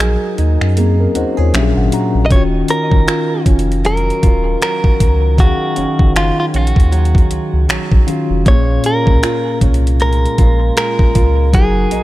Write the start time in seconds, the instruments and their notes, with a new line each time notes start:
Already playing: sub bass A#1, tine electric piano F#3 D#4 G#4 A#4, nylon-string guitar F#3 G#3 D#4
0.00 nylon-string guitar G#4, finger snap, closed hi-hat
0.38 sub bass D#2, nylon-string guitar D#4, closed hi-hat
0.61 sub bass F#2, finger snap
0.77 nylon-string guitar A#3, tine electric piano C4 G#4, closed hi-hat
1.00 tine electric piano C#4 A#4
1.15 sub bass D#2, tine electric piano D#4 C5 D#5, nylon-string guitar F#4, closed hi-hat
1.37 sub bass D#2, tine electric piano F4 C#5, nylon-string guitar G#4
1.53 sub bass A#1, nylon-string guitar A#2, tine electric piano A#2 F#3 C#4 D4 G4 E5, finger snap, closed hi-hat
1.63 tine electric piano G#4
1.76 sub bass G#1, tine electric piano F#5
1.92 nylon-string guitar F#4, tine electric piano A#5, closed hi-hat
2.15 sub bass A#1
2.26 tine electric piano D#3, clean electric guitar D#5
2.30 sub bass D#1, nylon-string guitar D#3, tine electric piano C#4 F4, clean electric guitar C#5, kick, closed hi-hat
2.35 tine electric piano F#4
2.68 nylon-string guitar C#4, clean electric guitar A#4, closed hi-hat
2.92 sub bass F#1, kick
3.07 nylon-string guitar F4, finger snap, closed hi-hat
3.45 sub bass F1, nylon-string guitar C#4, kick, closed hi-hat
3.59 closed hi-hat
3.72 closed hi-hat
3.84 nylon-string guitar F#3, clean electric guitar A#4, closed hi-hat
3.97 closed hi-hat
4.10 closed hi-hat
4.23 sub bass D#1, nylon-string guitar F4, kick, closed hi-hat
4.61 nylon-string guitar F#3, clean electric guitar A#4, finger snap, closed hi-hat
4.84 kick
5.00 sub bass C#2, kick, closed hi-hat
5.37 tine electric piano D#3 C#4 F5, nylon-string guitar D#3, clean electric guitar F#4, kick, closed hi-hat
5.42 tine electric piano G#4
5.76 sub bass F#1, nylon-string guitar C#4, closed hi-hat
5.99 sub bass F#1, kick
6.16 clean electric guitar F4, finger snap, closed hi-hat
6.40 clean electric guitar F4
6.54 sub bass A#1, nylon-string guitar C#4, clean electric guitar F#4, closed hi-hat
6.67 closed hi-hat
6.76 sub bass D#2, kick, closed hi-hat
6.92 nylon-string guitar F#3, closed hi-hat
7.05 closed hi-hat
7.15 kick, closed hi-hat
7.31 sub bass C#2, closed hi-hat
7.53 sub bass C#2
7.69 sub bass A#1, nylon-string guitar F#3, finger snap, closed hi-hat
7.92 sub bass A#1, kick
8.07 tine electric piano D#3 C#4 F4 F#4, nylon-string guitar F4, closed hi-hat
8.30 sub bass F1
8.45 sub bass A#1, tine electric piano A#2 A#3 C#4, nylon-string guitar A#2, clean electric guitar C#5, kick, closed hi-hat
8.50 tine electric piano G#4
8.84 nylon-string guitar C#4, clean electric guitar A#4, closed hi-hat
9.07 sub bass C#2, kick
9.23 nylon-string guitar F4, finger snap, closed hi-hat
9.61 sub bass C2, nylon-string guitar C#4, kick, closed hi-hat
9.74 closed hi-hat
9.87 closed hi-hat
10.00 nylon-string guitar G#3, clean electric guitar A#4, closed hi-hat
10.13 closed hi-hat
10.26 closed hi-hat
10.38 sub bass A#1, nylon-string guitar F4, kick, closed hi-hat
10.76 nylon-string guitar G#3, clean electric guitar A#4, finger snap, closed hi-hat
10.99 kick
11.15 sub bass C#2, nylon-string guitar F4, kick, closed hi-hat
11.52 sub bass F#1, tine electric piano F#3 D#4 G#4, nylon-string guitar F#3, clean electric guitar G#4, kick, closed hi-hat
11.57 tine electric piano A#4
11.91 sub bass A#1, nylon-string guitar D#4, closed hi-hat